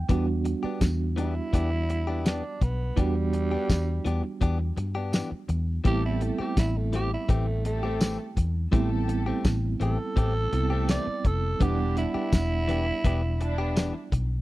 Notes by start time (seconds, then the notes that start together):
0.09 E2 E3 G3 B3 D4 F#4 G4, kick, closed hi-hat
0.27 muted clean electric guitar stroke
0.45 muted clean electric guitar stroke, closed hi-hat
0.63 B3 D4 G4, muted fingered electric bass stroke
0.81 E2, muted clean electric guitar stroke, kick, snare, closed hi-hat, tambourine
1.16 E3 B3 D4 E4 G4, closed hi-hat
1.35 muted clean electric guitar stroke
1.53 E2 E3 B3 D4 G4, kick, closed hi-hat
1.71 muted clean electric guitar stroke
1.89 muted clean electric guitar stroke, closed hi-hat
2.07 B3 D4 G4
2.25 E3 B3 D4 G4, snare, closed hi-hat, tambourine
2.44 muted clean electric guitar stroke
2.61 B1 B3, muted clean electric guitar stroke, kick, closed hi-hat
2.96 E2 E3 G3 B3 D4 F#4 G4, kick, closed hi-hat
3.16 muted clean electric guitar stroke
3.33 muted clean electric guitar stroke, closed hi-hat
3.51 B3 D4 G4
3.69 E2, muted clean electric guitar stroke, kick, snare, closed hi-hat, tambourine
4.05 E2 E3 B3 D4 G4, closed hi-hat
4.24 muted clean electric guitar stroke
4.41 E2 E3 B3 D4 G4, kick, closed hi-hat
4.59 muted clean electric guitar stroke
4.77 G2, muted clean electric guitar stroke, closed hi-hat
4.95 B3 D4 G4
5.13 E3 B3 D4 G4, snare, closed hi-hat, tambourine
5.31 muted clean electric guitar stroke, muted fingered electric bass stroke
5.49 E2, muted clean electric guitar stroke, closed hi-hat
5.84 A1 E3 G3 A3 B3 C4 E4 G4 A4, kick, closed hi-hat
6.03 E4, muted clean electric guitar stroke
6.21 A3, muted clean electric guitar stroke, closed hi-hat
6.39 A3 C4 G4, muted fingered electric bass stroke
6.57 A1 E4, muted clean electric guitar stroke, kick, snare, closed hi-hat, tambourine
6.77 A3
6.93 E3 A3 C4 G4, closed hi-hat
7.11 E4, muted clean electric guitar stroke
7.29 A1 E3 A3 C4 G4, kick, closed hi-hat
7.47 muted clean electric guitar stroke
7.65 A3 G4 A4, muted clean electric guitar stroke, closed hi-hat
7.83 A3 C4 G4
8.00 E3 A3 C4 G4, snare, closed hi-hat, tambourine
8.19 muted clean electric guitar stroke
8.37 E2, muted clean electric guitar stroke, kick, closed hi-hat
8.71 A1 E3 G3 A3 B3 C4 E4 G4 A4, kick, closed hi-hat
8.91 muted clean electric guitar stroke
9.08 muted clean electric guitar stroke, closed hi-hat
9.26 A3 C4 G4
9.44 A1, muted clean electric guitar stroke, kick, snare, closed hi-hat, tambourine
9.80 A1 E3 A3 C4 G4 A4, closed hi-hat
9.99 muted clean electric guitar stroke
10.16 A1 E3 A3 C4 G4, kick, closed hi-hat
10.35 muted clean electric guitar stroke
10.52 C2 G3 B3 C4 E4 G4 A4, muted clean electric guitar stroke, closed hi-hat
10.70 A3 C4 G4
10.88 E3 A3 C4 G4 D5, snare, closed hi-hat, tambourine
11.07 muted fingered electric bass stroke, muted clean electric guitar stroke
11.24 F1 A4, muted clean electric guitar stroke, kick, closed hi-hat
11.59 E1 E3 G3 B3 D4 E4 G4 F#5, kick, closed hi-hat
11.79 muted clean electric guitar stroke
11.97 E4, muted clean electric guitar stroke, closed hi-hat
12.14 B3 D4 G4, muted fingered electric bass stroke
12.33 E1, muted clean electric guitar stroke, kick, snare, closed hi-hat, tambourine
12.68 E3 B3 D4 G4, closed hi-hat
12.87 muted clean electric guitar stroke
13.04 E1 E3 B3 D4 G4, kick, closed hi-hat
13.22 muted clean electric guitar stroke
13.40 D4 E4, muted clean electric guitar stroke, closed hi-hat
13.58 B3 D4 G4
13.76 E3 B3 D4 G4, snare, closed hi-hat, tambourine
13.95 muted clean electric guitar stroke
14.12 B1, muted clean electric guitar stroke, kick, closed hi-hat